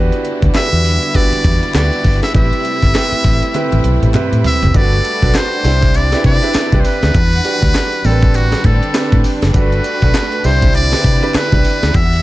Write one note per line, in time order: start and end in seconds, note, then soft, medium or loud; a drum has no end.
0.00 2.30 D3 medium
0.00 4.70 G3 medium
0.00 2.31 B3 medium
0.00 0.38 D4 medium
0.00 4.70 E4 medium
0.00 0.38 F#4 medium
0.00 0.38 G4 medium
0.00 0.38 B4 loud
0.12 closed hi-hat soft
0.25 closed hi-hat medium
0.42 0.52 D2 medium
0.42 kick medium
0.42 closed hi-hat soft
0.54 0.98 D4 medium
0.54 0.98 F#4 medium
0.54 0.98 G4 medium
0.54 0.98 B4 medium
0.54 1.18 E5 loud
0.54 muted fingered electric bass stroke medium
0.54 snare loud
0.54 clap medium
0.54 closed hi-hat medium
0.72 0.97 E2 medium
0.72 closed hi-hat soft
0.84 open hi-hat medium
1.02 closed hi-hat medium
1.14 1.58 D4 medium
1.14 1.58 F#4 medium
1.14 1.58 G4 medium
1.14 1.58 B4 medium
1.14 1.75 D5 loud
1.14 kick medium
1.14 clap medium
1.14 closed hi-hat medium
1.32 muted fingered electric bass stroke soft
1.32 closed hi-hat medium
1.44 1.59 E2 medium
1.44 kick medium
1.44 closed hi-hat medium
1.63 closed hi-hat medium
1.74 1.89 D2 loud
1.74 2.18 D4 medium
1.74 2.18 F#4 medium
1.74 2.18 G4 medium
1.74 2.18 B4 medium
1.74 2.20 D5 loud
1.74 snare loud
1.74 clap loud
1.74 clap medium
1.74 closed hi-hat medium
1.93 closed hi-hat medium
2.04 2.19 G1 medium
2.04 kick medium
2.04 open hi-hat medium
2.23 2.34 E5 medium
2.23 snare medium
2.23 closed hi-hat medium
2.34 2.49 A1 loud
2.34 4.72 C3 medium
2.34 4.72 A3 medium
2.34 2.78 C4 medium
2.34 2.78 E4 medium
2.34 2.78 G4 medium
2.34 2.78 B4 medium
2.34 4.11 E5 loud
2.34 kick loud
2.34 closed hi-hat medium
2.53 closed hi-hat soft
2.65 closed hi-hat medium
2.82 2.92 G1 medium
2.82 kick medium
2.82 closed hi-hat soft
2.94 3.38 C4 medium
2.94 3.38 E4 medium
2.94 3.38 G4 medium
2.94 3.38 B4 medium
2.94 snare loud
2.94 clap medium
2.94 closed hi-hat medium
3.12 muted fingered electric bass stroke soft
3.12 closed hi-hat soft
3.24 3.39 A1 medium
3.24 kick loud
3.24 open hi-hat medium
3.43 closed hi-hat medium
3.54 3.98 C4 medium
3.54 3.98 E4 medium
3.54 3.98 G4 medium
3.54 3.98 B4 loud
3.54 clap medium
3.54 closed hi-hat medium
3.54 high tom medium
3.72 3.82 A1 medium
3.72 closed hi-hat medium
3.72 high tom medium
3.84 3.99 B1 medium
3.84 closed hi-hat medium
4.02 4.12 A1 medium
4.02 closed hi-hat medium
4.02 mid tom medium
4.14 4.58 C4 loud
4.14 4.58 E4 medium
4.14 4.58 G4 medium
4.14 4.58 B4 loud
4.14 clap loud
4.14 closed hi-hat medium
4.14 mid tom medium
4.32 4.42 A2 medium
4.32 closed hi-hat medium
4.44 4.78 E5 loud
4.44 floor tom loud
4.44 open hi-hat medium
4.62 4.72 F#1 medium
4.62 closed hi-hat medium
4.62 floor tom loud
4.74 4.99 G1 loud
4.74 5.64 G3 medium
4.74 5.64 A3 medium
4.74 5.05 D4 medium
4.74 7.12 D4 medium
4.74 5.05 F#4 medium
4.74 5.64 F#4 medium
4.74 5.06 A4 medium
4.74 5.06 B4 medium
4.74 5.38 D5 loud
4.74 kick loud
4.74 closed hi-hat medium
4.74 tambourine medium
4.93 closed hi-hat soft
5.04 closed hi-hat medium
5.04 tambourine medium
5.22 5.32 B1 medium
5.22 5.53 D4 medium
5.22 5.53 F#4 medium
5.22 5.53 A4 medium
5.22 5.54 B4 medium
5.22 kick medium
5.22 closed hi-hat soft
5.34 5.98 C5 loud
5.34 snare loud
5.34 clap medium
5.34 closed hi-hat medium
5.34 tambourine loud
5.52 closed hi-hat medium
5.64 6.13 C2 loud
5.64 7.13 D3 medium
5.64 7.13 C4 medium
5.64 6.02 D4 medium
5.64 6.02 E4 medium
5.64 7.13 E4 medium
5.64 6.02 G4 medium
5.64 6.02 C5 medium
5.64 open hi-hat medium
5.64 tambourine medium
5.82 kick loud
5.82 closed hi-hat medium
5.94 6.25 D5 loud
5.94 clap medium
5.94 closed hi-hat medium
5.94 tambourine medium
6.12 6.31 D4 medium
6.12 6.31 E4 medium
6.12 6.32 G4 medium
6.12 6.32 B4 medium
6.12 snare medium
6.12 closed hi-hat medium
6.24 6.39 C3 medium
6.24 6.82 D5 loud
6.24 kick medium
6.24 closed hi-hat medium
6.43 6.61 D4 medium
6.43 6.61 E4 medium
6.43 6.62 G4 medium
6.43 6.62 B4 medium
6.43 closed hi-hat medium
6.54 muted fingered electric bass stroke soft
6.54 snare loud
6.54 clap loud
6.54 closed hi-hat medium
6.54 tambourine loud
6.72 6.82 C2 medium
6.72 7.14 D4 medium
6.72 7.15 E4 medium
6.72 7.15 G4 medium
6.72 7.15 B4 medium
6.72 kick loud
6.72 closed hi-hat medium
6.80 6.87 C5 medium
6.84 8.07 B4 loud
6.84 open hi-hat medium
6.84 tambourine medium
7.02 7.12 D2 medium
7.02 snare medium
7.02 closed hi-hat medium
7.14 7.39 E2 loud
7.14 8.04 E3 medium
7.14 8.04 G3 medium
7.14 8.03 D4 medium
7.14 8.04 F#5 medium
7.14 kick loud
7.14 closed hi-hat medium
7.14 tambourine medium
7.33 closed hi-hat soft
7.44 8.03 D4 medium
7.44 8.05 F#4 medium
7.44 8.05 G4 medium
7.44 8.05 B4 medium
7.44 closed hi-hat medium
7.44 tambourine medium
7.62 7.72 D2 loud
7.62 kick loud
7.62 closed hi-hat soft
7.74 snare loud
7.74 clap medium
7.74 closed hi-hat medium
7.74 tambourine medium
7.92 closed hi-hat medium
8.04 8.53 A1 loud
8.04 9.53 D3 medium
8.04 8.79 G3 medium
8.04 9.53 G3 medium
8.04 8.79 C4 medium
8.04 9.53 C4 medium
8.04 8.79 D4 medium
8.04 11.91 D4 medium
8.04 8.37 A4 medium
8.04 8.13 A#4 medium
8.04 open hi-hat medium
8.04 tambourine medium
8.12 8.83 B4 medium
8.22 kick loud
8.22 closed hi-hat medium
8.34 8.67 F#4 medium
8.34 clap medium
8.34 closed hi-hat medium
8.34 tambourine medium
8.52 snare medium
8.52 closed hi-hat medium
8.64 8.79 A2 loud
8.64 9.29 A4 medium
8.64 kick medium
8.64 closed hi-hat medium
8.83 closed hi-hat medium
8.94 9.38 C4 medium
8.94 9.38 D4 medium
8.94 9.38 G4 medium
8.94 9.38 B4 medium
8.94 snare loud
8.94 clap loud
8.94 closed hi-hat medium
8.94 tambourine loud
9.12 9.22 A2 medium
9.12 kick loud
9.12 closed hi-hat medium
9.24 open hi-hat medium
9.24 tambourine medium
9.42 9.52 F#1 medium
9.42 snare medium
9.42 closed hi-hat medium
9.54 9.79 G1 loud
9.54 10.43 G3 medium
9.54 10.43 A3 medium
9.54 9.85 D4 medium
9.54 10.43 F#4 medium
9.54 9.86 F#4 medium
9.54 9.86 A4 medium
9.54 9.86 B4 medium
9.54 10.47 B4 medium
9.54 kick loud
9.54 closed hi-hat medium
9.54 tambourine medium
9.72 closed hi-hat soft
9.84 closed hi-hat medium
9.84 tambourine medium
10.02 10.12 B1 medium
10.02 10.33 D4 medium
10.02 10.33 F#4 medium
10.02 10.33 A4 medium
10.02 10.34 B4 medium
10.02 kick medium
10.02 closed hi-hat soft
10.14 snare loud
10.14 clap medium
10.14 closed hi-hat medium
10.14 tambourine medium
10.32 closed hi-hat medium
10.44 10.93 C2 loud
10.44 11.93 D3 medium
10.44 11.93 C4 medium
10.44 10.81 D4 medium
10.44 11.93 E4 medium
10.44 10.82 E4 medium
10.44 10.82 G4 medium
10.44 10.82 C5 medium
10.44 10.75 C5 medium
10.44 open hi-hat medium
10.44 tambourine medium
10.62 kick loud
10.62 closed hi-hat medium
10.74 11.37 D5 loud
10.74 clap medium
10.74 closed hi-hat medium
10.74 tambourine medium
10.92 11.11 D4 medium
10.92 11.11 E4 medium
10.92 11.11 G4 medium
10.92 11.12 B4 medium
10.92 snare medium
10.92 closed hi-hat medium
11.04 11.19 C3 medium
11.04 kick medium
11.04 closed hi-hat medium
11.22 11.41 D4 medium
11.22 11.41 E4 medium
11.22 11.41 G4 medium
11.22 11.41 B4 medium
11.22 closed hi-hat medium
11.34 11.97 B4 loud
11.34 muted fingered electric bass stroke soft
11.34 snare loud
11.34 clap loud
11.34 closed hi-hat medium
11.34 tambourine medium
11.52 11.62 C2 medium
11.52 11.94 D4 medium
11.52 11.94 E4 medium
11.52 11.95 G4 medium
11.52 11.95 B4 medium
11.52 kick loud
11.52 closed hi-hat medium
11.64 open hi-hat medium
11.64 tambourine medium
11.83 11.92 D2 medium
11.83 snare medium
11.83 closed hi-hat medium
11.94 12.19 E2 loud
11.94 12.22 E3 medium
11.94 12.22 G3 medium
11.94 12.22 D4 medium
11.94 12.22 E5 loud
11.94 12.22 F#5 medium
11.94 kick loud
11.94 closed hi-hat medium
11.94 tambourine medium
12.13 closed hi-hat soft